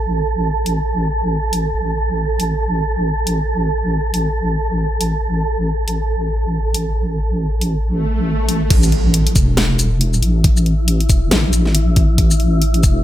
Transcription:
Already playing: A1 A4
0.66 open hi-hat
1.53 open hi-hat
1.74 A1
2.40 open hi-hat
3.27 open hi-hat
4.14 open hi-hat
5.01 open hi-hat
5.88 open hi-hat
6.74 open hi-hat
7.61 open hi-hat
7.83 swell
8.49 open hi-hat
8.70 A1 E4, kick, closed hi-hat, crash, impact
8.83 shaker
8.92 closed hi-hat
9.14 closed hi-hat
9.27 closed hi-hat
9.36 E1, kick, open hi-hat, shaker
9.57 snare, closed hi-hat
9.79 closed hi-hat, shaker
10.01 closed hi-hat
10.14 shaker
10.22 A1, open hi-hat
10.44 kick, closed hi-hat
10.57 shaker
10.66 closed hi-hat
10.88 closed hi-hat
11.00 closed hi-hat
11.09 E1, kick, open hi-hat, shaker
11.31 A1, snare, closed hi-hat
11.53 A1, closed hi-hat, shaker
11.66 snare
11.75 closed hi-hat
11.96 kick, open hi-hat
12.18 kick, closed hi-hat
12.31 shaker
12.40 closed hi-hat
12.62 closed hi-hat
12.74 closed hi-hat
12.83 E1, kick, open hi-hat, shaker

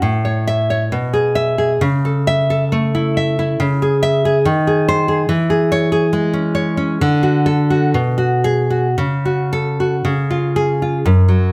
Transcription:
0.02 A2
0.25 C#5
0.47 E5
0.70 C#5
0.92 B2
1.13 G#4
1.35 E5
1.58 G#4
1.81 C#3
2.05 A4
2.27 E5
2.50 A4
2.72 A3
2.95 E4
3.17 E5
3.39 E4
3.60 C#3
3.82 G#4
4.03 E5
4.25 G#4
4.45 D#3
4.67 G#4
4.88 C5
5.08 G#4
5.29 E3
5.50 G#4
5.72 C#5
5.92 G#4
6.13 G#3
6.33 C#4
6.55 C#5
6.77 C#4
7.01 D3
7.23 F#4
7.46 A4
7.70 F#4
7.94 B2
8.18 F#4
8.44 G#4
8.70 F#4
8.98 C#3
9.25 F#4
9.53 A4
9.80 F#4
10.05 C#3
10.31 F4
10.56 G#4
10.82 F4
11.06 F#2
11.28 F#3

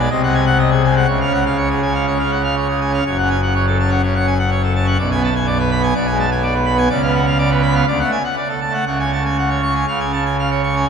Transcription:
0.10 C2 C3 D#5
0.23 G#3 F#5
0.34 G#5
0.46 F#5
0.59 D#5
0.71 G#4
0.84 G#5
0.92 G#3
0.97 F#5
1.07 C#2 C#3 C#5
1.21 F5
1.25 C#4
1.33 F#5
1.45 F5
1.57 C#5
1.70 G#4
1.82 G#5
1.90 C#4
1.94 F5
2.06 G#3 C#5
2.19 C#4 F5
2.31 F#5
2.44 F5
2.56 C#5
2.68 G#4
2.81 G#5
2.90 C#4 F5
3.06 F#1 F#2 C#5
3.18 F#5
3.22 C#4
3.30 G#5
3.42 F#5
3.55 C#5
3.67 A4
3.79 A5
3.86 C#4
3.91 F#5
4.03 C#3 C#5
4.15 F#5
4.20 C#4
4.27 G#5
4.39 F#5
4.51 C#5
4.63 A4
4.75 A5
4.83 C#4 F#5
4.98 B1 B2 D5
5.11 B3 G#5
5.24 A5
5.35 G#5
5.46 D5
5.59 B4
5.71 B5
5.79 B3 G#5
5.95 B1 B2 D5
6.06 G#5
6.11 G#3
6.19 A5
6.31 G#5
6.42 D5
6.54 B4
6.66 B5
6.74 B3 G#5
6.89 C#2 C#3 D5
7.02 F5
7.06 B3
7.15 F#5
7.26 F5
7.38 D5
7.50 B4
7.63 B5
7.70 B3
7.75 F5
7.87 D2 D3 D5
7.99 A3 F#5
8.12 G#5
8.24 F#5
8.37 D5
8.49 A4
8.61 A5
8.70 A3 F#5
8.86 C#2 C#3 F#5
8.99 G#5
9.04 C#4
9.13 A5
9.25 G#5
9.38 F#5
9.50 C#5
9.62 C#6
9.71 C#4
9.75 G#5
9.87 C#2 C#3 F5
10.00 G#5
10.05 C#4
10.13 A5
10.25 G#5
10.39 F5
10.51 C#5
10.63 C#6
10.72 C#4 G#5

